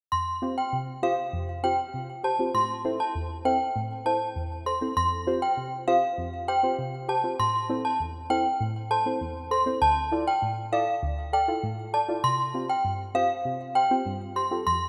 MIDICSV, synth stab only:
0, 0, Header, 1, 2, 480
1, 0, Start_track
1, 0, Tempo, 606061
1, 95, Time_signature, 4, 2, 24, 8
1, 11791, End_track
2, 0, Start_track
2, 0, Title_t, "Synth stab"
2, 0, Program_c, 0, 62
2, 96, Note_on_c, 0, 41, 75
2, 332, Note_on_c, 0, 60, 74
2, 333, Note_on_c, 0, 65, 69
2, 335, Note_on_c, 0, 67, 67
2, 336, Note_on_c, 0, 72, 83
2, 429, Note_off_c, 0, 60, 0
2, 430, Note_off_c, 0, 65, 0
2, 431, Note_off_c, 0, 67, 0
2, 432, Note_off_c, 0, 72, 0
2, 453, Note_off_c, 0, 41, 0
2, 575, Note_on_c, 0, 48, 77
2, 812, Note_on_c, 0, 60, 74
2, 813, Note_on_c, 0, 65, 67
2, 815, Note_on_c, 0, 67, 69
2, 815, Note_on_c, 0, 72, 78
2, 909, Note_off_c, 0, 60, 0
2, 910, Note_off_c, 0, 65, 0
2, 911, Note_off_c, 0, 67, 0
2, 911, Note_off_c, 0, 72, 0
2, 932, Note_off_c, 0, 48, 0
2, 1053, Note_on_c, 0, 41, 90
2, 1293, Note_on_c, 0, 60, 75
2, 1295, Note_on_c, 0, 65, 68
2, 1296, Note_on_c, 0, 67, 71
2, 1298, Note_on_c, 0, 72, 86
2, 1390, Note_off_c, 0, 60, 0
2, 1391, Note_off_c, 0, 65, 0
2, 1392, Note_off_c, 0, 67, 0
2, 1393, Note_off_c, 0, 72, 0
2, 1411, Note_off_c, 0, 41, 0
2, 1535, Note_on_c, 0, 48, 89
2, 1771, Note_on_c, 0, 67, 72
2, 1776, Note_on_c, 0, 72, 80
2, 1821, Note_off_c, 0, 67, 0
2, 1824, Note_off_c, 0, 72, 0
2, 1892, Note_off_c, 0, 48, 0
2, 1893, Note_on_c, 0, 60, 64
2, 1893, Note_on_c, 0, 65, 56
2, 1895, Note_on_c, 0, 67, 59
2, 1897, Note_on_c, 0, 72, 70
2, 1990, Note_off_c, 0, 60, 0
2, 1990, Note_off_c, 0, 65, 0
2, 1991, Note_off_c, 0, 67, 0
2, 1992, Note_off_c, 0, 72, 0
2, 2012, Note_on_c, 0, 45, 79
2, 2252, Note_on_c, 0, 60, 78
2, 2254, Note_on_c, 0, 64, 68
2, 2254, Note_on_c, 0, 69, 70
2, 2256, Note_on_c, 0, 72, 84
2, 2350, Note_off_c, 0, 60, 0
2, 2351, Note_off_c, 0, 64, 0
2, 2351, Note_off_c, 0, 69, 0
2, 2352, Note_off_c, 0, 72, 0
2, 2371, Note_off_c, 0, 45, 0
2, 2496, Note_on_c, 0, 40, 78
2, 2731, Note_on_c, 0, 60, 72
2, 2732, Note_on_c, 0, 64, 67
2, 2733, Note_on_c, 0, 69, 68
2, 2735, Note_on_c, 0, 72, 83
2, 2829, Note_off_c, 0, 60, 0
2, 2829, Note_off_c, 0, 64, 0
2, 2830, Note_off_c, 0, 69, 0
2, 2831, Note_off_c, 0, 72, 0
2, 2852, Note_off_c, 0, 40, 0
2, 2974, Note_on_c, 0, 45, 87
2, 3211, Note_on_c, 0, 60, 74
2, 3213, Note_on_c, 0, 64, 69
2, 3215, Note_on_c, 0, 69, 71
2, 3216, Note_on_c, 0, 72, 85
2, 3309, Note_off_c, 0, 60, 0
2, 3310, Note_off_c, 0, 64, 0
2, 3311, Note_off_c, 0, 69, 0
2, 3312, Note_off_c, 0, 72, 0
2, 3332, Note_off_c, 0, 45, 0
2, 3451, Note_on_c, 0, 40, 87
2, 3692, Note_on_c, 0, 69, 70
2, 3695, Note_on_c, 0, 72, 83
2, 3741, Note_off_c, 0, 69, 0
2, 3743, Note_off_c, 0, 72, 0
2, 3810, Note_off_c, 0, 40, 0
2, 3811, Note_on_c, 0, 60, 66
2, 3812, Note_on_c, 0, 64, 57
2, 3813, Note_on_c, 0, 69, 59
2, 3814, Note_on_c, 0, 72, 73
2, 3909, Note_off_c, 0, 60, 0
2, 3910, Note_off_c, 0, 64, 0
2, 3910, Note_off_c, 0, 69, 0
2, 3911, Note_off_c, 0, 72, 0
2, 3933, Note_on_c, 0, 41, 81
2, 4171, Note_on_c, 0, 60, 75
2, 4172, Note_on_c, 0, 65, 74
2, 4174, Note_on_c, 0, 67, 70
2, 4176, Note_on_c, 0, 72, 84
2, 4269, Note_off_c, 0, 60, 0
2, 4270, Note_off_c, 0, 65, 0
2, 4270, Note_off_c, 0, 67, 0
2, 4272, Note_off_c, 0, 72, 0
2, 4291, Note_off_c, 0, 41, 0
2, 4413, Note_on_c, 0, 48, 81
2, 4652, Note_on_c, 0, 60, 75
2, 4654, Note_on_c, 0, 65, 68
2, 4655, Note_on_c, 0, 67, 68
2, 4657, Note_on_c, 0, 72, 80
2, 4750, Note_off_c, 0, 60, 0
2, 4751, Note_off_c, 0, 65, 0
2, 4751, Note_off_c, 0, 67, 0
2, 4752, Note_off_c, 0, 72, 0
2, 4771, Note_off_c, 0, 48, 0
2, 4893, Note_on_c, 0, 41, 92
2, 5132, Note_on_c, 0, 67, 80
2, 5136, Note_on_c, 0, 72, 88
2, 5182, Note_off_c, 0, 67, 0
2, 5183, Note_off_c, 0, 72, 0
2, 5251, Note_off_c, 0, 41, 0
2, 5252, Note_on_c, 0, 60, 76
2, 5253, Note_on_c, 0, 65, 65
2, 5255, Note_on_c, 0, 67, 70
2, 5257, Note_on_c, 0, 72, 81
2, 5349, Note_off_c, 0, 60, 0
2, 5350, Note_off_c, 0, 65, 0
2, 5351, Note_off_c, 0, 67, 0
2, 5352, Note_off_c, 0, 72, 0
2, 5373, Note_on_c, 0, 48, 91
2, 5610, Note_on_c, 0, 67, 77
2, 5616, Note_on_c, 0, 72, 82
2, 5660, Note_off_c, 0, 67, 0
2, 5663, Note_off_c, 0, 72, 0
2, 5731, Note_off_c, 0, 48, 0
2, 5732, Note_on_c, 0, 60, 66
2, 5733, Note_on_c, 0, 65, 61
2, 5734, Note_on_c, 0, 67, 61
2, 5736, Note_on_c, 0, 72, 75
2, 5830, Note_off_c, 0, 60, 0
2, 5830, Note_off_c, 0, 65, 0
2, 5831, Note_off_c, 0, 67, 0
2, 5832, Note_off_c, 0, 72, 0
2, 5855, Note_on_c, 0, 45, 75
2, 6093, Note_on_c, 0, 60, 76
2, 6095, Note_on_c, 0, 64, 72
2, 6097, Note_on_c, 0, 69, 71
2, 6098, Note_on_c, 0, 72, 84
2, 6190, Note_off_c, 0, 60, 0
2, 6191, Note_off_c, 0, 64, 0
2, 6192, Note_off_c, 0, 69, 0
2, 6192, Note_off_c, 0, 72, 0
2, 6212, Note_off_c, 0, 45, 0
2, 6335, Note_on_c, 0, 40, 80
2, 6572, Note_on_c, 0, 60, 76
2, 6573, Note_on_c, 0, 64, 68
2, 6575, Note_on_c, 0, 69, 68
2, 6576, Note_on_c, 0, 72, 83
2, 6669, Note_off_c, 0, 60, 0
2, 6670, Note_off_c, 0, 64, 0
2, 6671, Note_off_c, 0, 69, 0
2, 6672, Note_off_c, 0, 72, 0
2, 6692, Note_off_c, 0, 40, 0
2, 6814, Note_on_c, 0, 45, 92
2, 7053, Note_on_c, 0, 69, 80
2, 7058, Note_on_c, 0, 72, 91
2, 7102, Note_off_c, 0, 69, 0
2, 7105, Note_off_c, 0, 72, 0
2, 7172, Note_off_c, 0, 45, 0
2, 7174, Note_on_c, 0, 60, 73
2, 7177, Note_on_c, 0, 64, 69
2, 7177, Note_on_c, 0, 69, 66
2, 7179, Note_on_c, 0, 72, 84
2, 7270, Note_off_c, 0, 60, 0
2, 7272, Note_off_c, 0, 64, 0
2, 7272, Note_off_c, 0, 69, 0
2, 7273, Note_off_c, 0, 72, 0
2, 7295, Note_on_c, 0, 40, 90
2, 7531, Note_on_c, 0, 69, 75
2, 7536, Note_on_c, 0, 72, 84
2, 7581, Note_off_c, 0, 69, 0
2, 7584, Note_off_c, 0, 72, 0
2, 7650, Note_on_c, 0, 60, 66
2, 7652, Note_off_c, 0, 40, 0
2, 7652, Note_on_c, 0, 64, 59
2, 7652, Note_on_c, 0, 69, 64
2, 7655, Note_on_c, 0, 72, 72
2, 7749, Note_off_c, 0, 60, 0
2, 7749, Note_off_c, 0, 64, 0
2, 7750, Note_off_c, 0, 69, 0
2, 7751, Note_off_c, 0, 72, 0
2, 7773, Note_on_c, 0, 38, 79
2, 8012, Note_on_c, 0, 64, 81
2, 8014, Note_on_c, 0, 65, 69
2, 8015, Note_on_c, 0, 69, 73
2, 8017, Note_on_c, 0, 74, 83
2, 8109, Note_off_c, 0, 64, 0
2, 8111, Note_off_c, 0, 65, 0
2, 8111, Note_off_c, 0, 69, 0
2, 8112, Note_off_c, 0, 74, 0
2, 8131, Note_off_c, 0, 38, 0
2, 8254, Note_on_c, 0, 45, 81
2, 8492, Note_on_c, 0, 64, 75
2, 8494, Note_on_c, 0, 65, 72
2, 8495, Note_on_c, 0, 69, 73
2, 8497, Note_on_c, 0, 74, 87
2, 8589, Note_off_c, 0, 64, 0
2, 8590, Note_off_c, 0, 65, 0
2, 8591, Note_off_c, 0, 69, 0
2, 8592, Note_off_c, 0, 74, 0
2, 8612, Note_off_c, 0, 45, 0
2, 8733, Note_on_c, 0, 38, 93
2, 8972, Note_on_c, 0, 69, 80
2, 8978, Note_on_c, 0, 74, 83
2, 9021, Note_off_c, 0, 69, 0
2, 9024, Note_off_c, 0, 74, 0
2, 9091, Note_off_c, 0, 38, 0
2, 9092, Note_on_c, 0, 64, 75
2, 9093, Note_on_c, 0, 65, 69
2, 9095, Note_on_c, 0, 69, 71
2, 9097, Note_on_c, 0, 77, 84
2, 9189, Note_off_c, 0, 64, 0
2, 9190, Note_off_c, 0, 65, 0
2, 9191, Note_off_c, 0, 69, 0
2, 9192, Note_off_c, 0, 77, 0
2, 9213, Note_on_c, 0, 45, 90
2, 9452, Note_on_c, 0, 69, 74
2, 9456, Note_on_c, 0, 74, 86
2, 9501, Note_off_c, 0, 69, 0
2, 9503, Note_off_c, 0, 74, 0
2, 9571, Note_off_c, 0, 45, 0
2, 9571, Note_on_c, 0, 64, 70
2, 9572, Note_on_c, 0, 65, 64
2, 9574, Note_on_c, 0, 69, 61
2, 9575, Note_on_c, 0, 74, 73
2, 9669, Note_off_c, 0, 64, 0
2, 9669, Note_off_c, 0, 65, 0
2, 9670, Note_off_c, 0, 69, 0
2, 9671, Note_off_c, 0, 74, 0
2, 9691, Note_on_c, 0, 48, 77
2, 9931, Note_on_c, 0, 60, 77
2, 9933, Note_on_c, 0, 65, 71
2, 9934, Note_on_c, 0, 67, 70
2, 9936, Note_on_c, 0, 72, 83
2, 10029, Note_off_c, 0, 60, 0
2, 10030, Note_off_c, 0, 65, 0
2, 10031, Note_off_c, 0, 67, 0
2, 10032, Note_off_c, 0, 72, 0
2, 10050, Note_off_c, 0, 48, 0
2, 10173, Note_on_c, 0, 43, 79
2, 10411, Note_on_c, 0, 60, 80
2, 10414, Note_on_c, 0, 65, 70
2, 10415, Note_on_c, 0, 67, 71
2, 10416, Note_on_c, 0, 72, 86
2, 10509, Note_off_c, 0, 60, 0
2, 10510, Note_off_c, 0, 65, 0
2, 10511, Note_off_c, 0, 67, 0
2, 10511, Note_off_c, 0, 72, 0
2, 10531, Note_off_c, 0, 43, 0
2, 10653, Note_on_c, 0, 48, 89
2, 10890, Note_on_c, 0, 67, 78
2, 10895, Note_on_c, 0, 72, 90
2, 10941, Note_off_c, 0, 67, 0
2, 10943, Note_off_c, 0, 72, 0
2, 11011, Note_off_c, 0, 48, 0
2, 11013, Note_on_c, 0, 60, 74
2, 11014, Note_on_c, 0, 65, 69
2, 11016, Note_on_c, 0, 67, 68
2, 11017, Note_on_c, 0, 72, 78
2, 11110, Note_off_c, 0, 60, 0
2, 11111, Note_off_c, 0, 65, 0
2, 11111, Note_off_c, 0, 67, 0
2, 11112, Note_off_c, 0, 72, 0
2, 11132, Note_on_c, 0, 43, 91
2, 11370, Note_on_c, 0, 67, 73
2, 11374, Note_on_c, 0, 72, 83
2, 11420, Note_off_c, 0, 67, 0
2, 11423, Note_off_c, 0, 72, 0
2, 11491, Note_off_c, 0, 43, 0
2, 11491, Note_on_c, 0, 60, 65
2, 11492, Note_on_c, 0, 65, 63
2, 11494, Note_on_c, 0, 67, 59
2, 11495, Note_on_c, 0, 69, 75
2, 11589, Note_off_c, 0, 60, 0
2, 11589, Note_off_c, 0, 65, 0
2, 11590, Note_off_c, 0, 67, 0
2, 11591, Note_off_c, 0, 69, 0
2, 11614, Note_on_c, 0, 41, 76
2, 11791, Note_off_c, 0, 41, 0
2, 11791, End_track
0, 0, End_of_file